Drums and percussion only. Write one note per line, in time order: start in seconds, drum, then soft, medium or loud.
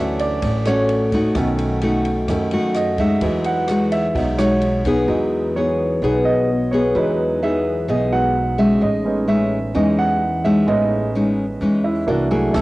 0.19 ride soft
0.42 kick medium
0.42 ride medium
0.65 cross-stick medium
0.65 ride medium
0.89 ride soft
1.12 kick medium
1.12 ride soft
1.35 kick medium
1.35 cross-stick medium
1.35 ride medium
1.59 ride soft
1.82 ride soft
2.05 ride soft
2.28 kick medium
2.28 cross-stick medium
2.28 ride medium
2.51 ride soft
2.75 cross-stick medium
2.75 ride soft
2.98 kick medium
2.98 ride soft
3.21 kick medium
3.21 ride medium
3.44 ride soft
3.68 cross-stick medium
3.68 ride soft
3.92 ride soft
4.15 kick medium
4.15 ride medium
4.39 cross-stick medium
4.39 ride medium
4.61 ride soft
4.85 kick medium
4.85 ride soft
12.54 kick medium
12.54 cross-stick medium
12.54 ride medium